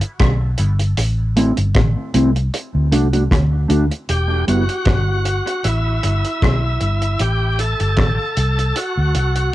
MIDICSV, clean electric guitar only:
0, 0, Header, 1, 2, 480
1, 0, Start_track
1, 0, Key_signature, 1, "minor"
1, 0, Tempo, 778210
1, 600, Time_signature, 4, 2, 24, 8
1, 5889, End_track
2, 0, Start_track
2, 0, Title_t, "Clean electric guitar"
2, 0, Program_c, 0, 27
2, 12, Note_on_c, 0, 64, 65
2, 17, Note_on_c, 0, 59, 56
2, 21, Note_on_c, 0, 55, 53
2, 71, Note_off_c, 0, 64, 0
2, 73, Note_off_c, 0, 59, 0
2, 75, Note_off_c, 0, 55, 0
2, 358, Note_on_c, 0, 55, 83
2, 361, Note_on_c, 0, 59, 80
2, 366, Note_on_c, 0, 64, 98
2, 450, Note_off_c, 0, 55, 0
2, 452, Note_off_c, 0, 59, 0
2, 454, Note_off_c, 0, 64, 0
2, 842, Note_on_c, 0, 57, 80
2, 845, Note_on_c, 0, 60, 86
2, 848, Note_on_c, 0, 64, 100
2, 932, Note_off_c, 0, 57, 0
2, 934, Note_off_c, 0, 60, 0
2, 935, Note_off_c, 0, 64, 0
2, 1319, Note_on_c, 0, 57, 76
2, 1323, Note_on_c, 0, 60, 93
2, 1327, Note_on_c, 0, 64, 89
2, 1410, Note_off_c, 0, 57, 0
2, 1412, Note_off_c, 0, 60, 0
2, 1414, Note_off_c, 0, 64, 0
2, 1797, Note_on_c, 0, 57, 82
2, 1803, Note_on_c, 0, 62, 85
2, 1805, Note_on_c, 0, 66, 81
2, 1889, Note_off_c, 0, 57, 0
2, 1892, Note_off_c, 0, 62, 0
2, 1893, Note_off_c, 0, 66, 0
2, 1929, Note_on_c, 0, 66, 71
2, 1932, Note_on_c, 0, 62, 58
2, 1935, Note_on_c, 0, 57, 52
2, 1988, Note_off_c, 0, 66, 0
2, 1989, Note_off_c, 0, 62, 0
2, 1991, Note_off_c, 0, 57, 0
2, 2271, Note_on_c, 0, 57, 78
2, 2276, Note_on_c, 0, 62, 81
2, 2281, Note_on_c, 0, 66, 81
2, 2366, Note_off_c, 0, 57, 0
2, 2368, Note_off_c, 0, 62, 0
2, 2371, Note_off_c, 0, 66, 0
2, 2759, Note_on_c, 0, 55, 73
2, 2765, Note_on_c, 0, 59, 74
2, 2768, Note_on_c, 0, 64, 80
2, 2850, Note_off_c, 0, 55, 0
2, 2853, Note_off_c, 0, 59, 0
2, 2854, Note_off_c, 0, 64, 0
2, 5889, End_track
0, 0, End_of_file